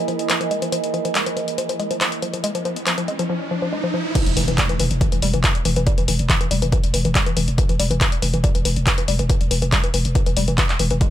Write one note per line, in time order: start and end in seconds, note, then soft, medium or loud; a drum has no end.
0.00 3.30 E3 medium
0.00 3.30 E4 medium
0.00 3.30 A#4 medium
0.00 3.30 D#5 medium
0.00 3.29 G#5 medium
0.08 0.14 F3 medium
0.08 closed hi-hat soft
0.19 closed hi-hat soft
0.30 0.35 F3 medium
0.30 clap loud
0.30 closed hi-hat medium
0.41 0.46 F3 medium
0.41 closed hi-hat soft
0.51 0.56 G#3 medium
0.51 closed hi-hat soft
0.62 0.67 F3 medium
0.62 closed hi-hat medium
0.72 0.78 F3 medium
0.72 closed hi-hat medium
0.72 riser medium
0.84 closed hi-hat medium
0.94 0.99 F3 medium
0.94 closed hi-hat soft
1.05 1.10 F3 medium
1.05 closed hi-hat medium
1.15 1.21 G#3 medium
1.15 clap loud
1.15 closed hi-hat medium
1.26 1.31 F3 medium
1.26 closed hi-hat medium
1.37 1.42 F3 medium
1.37 closed hi-hat soft
1.48 closed hi-hat soft
1.58 1.64 F3 medium
1.58 closed hi-hat medium
1.69 1.74 F3 medium
1.69 closed hi-hat soft
1.80 1.85 G#3 medium
1.80 closed hi-hat soft
1.91 1.96 F3 medium
1.91 closed hi-hat soft
2.01 2.06 F3 medium
2.01 clap loud
2.01 closed hi-hat medium
2.12 closed hi-hat soft
2.22 2.28 F3 medium
2.22 closed hi-hat soft
2.34 2.39 F3 medium
2.34 closed hi-hat medium
2.44 2.49 G#3 medium
2.44 closed hi-hat medium
2.55 2.60 F3 medium
2.55 closed hi-hat medium
2.65 2.71 F3 medium
2.65 closed hi-hat soft
2.76 closed hi-hat medium
2.87 2.92 F3 medium
2.87 clap loud
2.87 closed hi-hat medium
2.98 3.03 F3 medium
2.98 closed hi-hat medium
3.08 3.14 G#3 medium
3.08 closed hi-hat soft
3.19 3.24 F3 medium
3.19 closed hi-hat medium
3.30 3.35 F3 medium
3.51 3.57 F3 medium
3.62 3.67 F3 medium
3.73 3.78 G#3 medium
3.84 3.89 F3 medium
3.94 3.99 F3 medium
4.15 4.21 E3 medium
4.15 kick loud
4.15 closed hi-hat medium
4.15 crash loud
4.15 impact medium
4.26 4.36 E1 medium
4.26 closed hi-hat medium
4.37 4.47 E1 loud
4.37 4.42 E3 medium
4.37 open hi-hat loud
4.48 4.58 E1 medium
4.48 4.53 E3 medium
4.48 closed hi-hat medium
4.58 4.64 G3 medium
4.58 kick loud
4.58 clap loud
4.58 closed hi-hat medium
4.69 4.74 E3 medium
4.69 closed hi-hat medium
4.80 4.90 E1 loud
4.80 4.85 E3 medium
4.80 open hi-hat medium
4.91 5.01 E1 medium
4.91 closed hi-hat medium
5.01 5.07 E3 medium
5.01 kick loud
5.01 closed hi-hat medium
5.12 5.22 E1 medium
5.12 5.17 E3 medium
5.12 closed hi-hat medium
5.22 5.33 E1 loud
5.22 5.28 G3 medium
5.22 open hi-hat loud
5.34 5.44 E1 medium
5.34 5.39 E3 medium
5.34 closed hi-hat medium
5.44 5.49 E3 medium
5.44 kick loud
5.44 clap loud
5.44 closed hi-hat medium
5.55 closed hi-hat medium
5.65 5.76 E1 loud
5.65 5.71 E3 medium
5.65 open hi-hat medium
5.76 5.86 E1 medium
5.76 5.82 E3 medium
5.76 closed hi-hat medium
5.87 5.92 G3 medium
5.87 kick loud
5.87 closed hi-hat medium
5.98 6.08 E1 medium
5.98 6.03 E3 medium
5.98 closed hi-hat medium
6.08 6.19 E1 loud
6.08 6.14 E3 medium
6.08 open hi-hat loud
6.19 6.29 E1 medium
6.19 closed hi-hat medium
6.29 6.35 E3 medium
6.29 kick loud
6.29 clap loud
6.29 closed hi-hat medium
6.41 6.46 E3 medium
6.41 closed hi-hat medium
6.51 6.62 E1 loud
6.51 6.56 G3 medium
6.51 open hi-hat loud
6.62 6.72 E1 medium
6.62 6.67 E3 medium
6.62 closed hi-hat medium
6.72 6.78 E3 medium
6.72 kick loud
6.72 closed hi-hat medium
6.84 6.93 E1 medium
6.84 closed hi-hat medium
6.94 7.04 E1 loud
6.94 6.99 E3 medium
6.94 open hi-hat loud
7.05 7.15 E1 medium
7.05 7.10 E3 medium
7.05 closed hi-hat medium
7.15 7.21 G3 medium
7.15 kick loud
7.15 clap loud
7.15 closed hi-hat medium
7.26 7.31 E3 medium
7.26 closed hi-hat medium
7.37 7.47 E1 loud
7.37 7.42 E3 medium
7.37 open hi-hat loud
7.48 7.58 E1 medium
7.48 closed hi-hat medium
7.58 7.64 E3 medium
7.58 kick loud
7.58 closed hi-hat medium
7.69 7.79 E1 medium
7.69 7.74 E3 medium
7.69 closed hi-hat medium
7.80 7.90 E1 loud
7.80 7.85 G3 medium
7.80 open hi-hat loud
7.91 8.01 E1 medium
7.91 7.96 E3 medium
7.91 closed hi-hat medium
8.01 8.06 E3 medium
8.01 kick loud
8.01 clap loud
8.01 closed hi-hat medium
8.12 closed hi-hat medium
8.22 8.33 E1 loud
8.22 8.28 E3 medium
8.22 open hi-hat loud
8.34 8.44 E1 medium
8.34 8.39 E3 medium
8.34 closed hi-hat medium
8.44 8.49 G3 medium
8.44 kick loud
8.44 closed hi-hat medium
8.55 8.65 E1 medium
8.55 8.60 E3 medium
8.55 closed hi-hat medium
8.65 8.76 E1 loud
8.65 8.71 E3 medium
8.65 open hi-hat loud
8.76 8.86 E1 medium
8.76 closed hi-hat medium
8.87 8.92 E3 medium
8.87 kick loud
8.87 clap loud
8.87 closed hi-hat medium
8.98 9.03 E3 medium
8.98 closed hi-hat medium
9.08 9.19 E1 loud
9.08 9.14 G3 medium
9.08 open hi-hat loud
9.19 9.29 E1 medium
9.19 9.24 E3 medium
9.19 closed hi-hat medium
9.30 9.35 E3 medium
9.30 kick loud
9.30 closed hi-hat medium
9.41 9.50 E1 medium
9.41 closed hi-hat medium
9.51 9.62 E1 loud
9.51 9.56 E3 medium
9.51 open hi-hat loud
9.62 9.72 E1 medium
9.62 9.67 E3 medium
9.62 closed hi-hat medium
9.72 9.78 G3 medium
9.72 kick loud
9.72 clap loud
9.72 closed hi-hat medium
9.84 9.89 E3 medium
9.84 closed hi-hat medium
9.94 10.04 E1 loud
9.94 9.99 E3 medium
9.94 open hi-hat loud
10.05 10.15 E1 medium
10.05 closed hi-hat medium
10.15 10.21 E3 medium
10.15 kick loud
10.15 closed hi-hat medium
10.26 10.36 E1 medium
10.26 10.32 E3 medium
10.26 closed hi-hat soft
10.37 10.47 E1 loud
10.37 10.42 G3 medium
10.37 open hi-hat loud
10.48 10.58 E1 medium
10.48 10.53 E3 medium
10.48 closed hi-hat medium
10.58 10.64 E3 medium
10.58 kick loud
10.58 clap loud
10.58 closed hi-hat medium
10.69 clap medium
10.69 closed hi-hat medium
10.79 10.90 E1 loud
10.79 10.85 E3 medium
10.79 open hi-hat loud
10.91 11.01 E1 medium
10.91 10.96 E3 medium
10.91 closed hi-hat medium
11.01 11.07 G#3 medium
11.01 kick loud
11.01 closed hi-hat medium